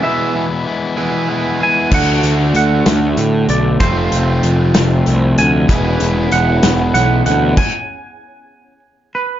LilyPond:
<<
  \new Staff \with { instrumentName = "Clean electric guitar" } { \time 6/8 \key e \mixolydian \tempo 4. = 64 e''2~ e''8 gis''8 | fis''4 fis''4. d''8 | c''4 r4. gis''8~ | gis''4 fis''4 fis''8 fis''8 |
gis''2 r8 b'8 | }
  \new Staff \with { instrumentName = "Analog synth pad" } { \time 6/8 \key e \mixolydian r2. | r2. | r2. | <b cis' e' gis' cis''>2. |
r2. | }
  \new Staff \with { instrumentName = "Overdriven electric guitar" } { \time 6/8 \key e \mixolydian <b e' gis'>8 r4 <b e' gis'>8 <b e' gis'>8 <b e' gis'>8 | <a d' fis'>2. | <f a c' f'>2. | <b e' gis'>2. |
r2. | }
  \new Staff \with { instrumentName = "Overdriven electric guitar" } { \clef bass \time 6/8 \key e \mixolydian <e, b, e gis b e'>8 <e gis b e'>8 <e gis b e'>8 <e, b, e gis b e'>8 <e gis b e'>4 | <d a d' fis'>2. | <f, c f a c' f'>2. | <e, b, e gis b e'>2. |
r2. | }
  \new Staff \with { instrumentName = "Picked electric bass" } { \clef bass \time 6/8 \key e \mixolydian r2. | d,8 d,8 d,8 d,8 a,8 b,,8 | f,,8 f,,8 f,,8 f,,8 c,8 d,8 | e,,8 e,,8 e,,8 e,,8 b,,8 d,8 |
r2. | }
  \new DrumStaff \with { instrumentName = "Drums" } \drummode { \time 6/8 r4. r4. | <cymc bd>8 hh8 hh8 <hh sn>8 hh8 hh8 | <hh bd>8 hh8 hh8 <hh sn>8 hh8 hh8 | <hh bd>8 hh8 hh8 <hh sn>8 hh8 hh8 |
<cymc bd>4. r4. | }
>>